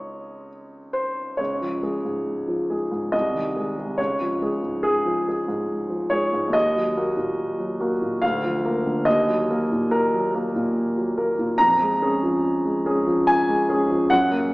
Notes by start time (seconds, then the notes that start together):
Already playing: C#2 C#3 G#3 F4 C#5 D#5
0.93 C5
1.37 C#2 C#5
1.61 F3
1.82 G#3 G#4
2.05 G#2
2.48 F3
2.70 G#3 G#4
2.91 G#2
3.12 C2 D#5
3.35 D#3
3.56 G#3 G#4
3.78 C3
3.98 C#2 C#5
4.21 F3
4.42 G#3 G#4
4.63 G#2
4.83 G#4
5.06 F3
5.28 G#3 G#4
5.48 G#2
5.89 F3
6.10 G#3 G#4 C#5
6.33 G#2
6.47 D#2
6.53 D#5
6.76 F#3
6.97 A#3 F#4
7.17 A#2
7.59 F#3
7.80 A#3 F#4
8.01 A#2
8.22 D2 F5
8.44 F3
8.64 A#3 A#4
8.86 D3
9.05 D#2 D#5
9.28 F#3
9.50 A#3 A#4
9.71 A#2
9.91 A#4
10.14 F#3
10.34 A#3 A#4
10.55 A#2
10.97 F#3
11.17 A#3 A#4
11.39 A#2
11.58 F2 A#5
11.81 G#3
12.02 C#4 G#4
12.23 F3
12.65 G#3
12.86 C#4 G#4
13.07 F3
13.27 G#5
13.49 G#3
13.69 C#4 G#4
13.90 F3
14.10 F#2 F#5
14.31 A#3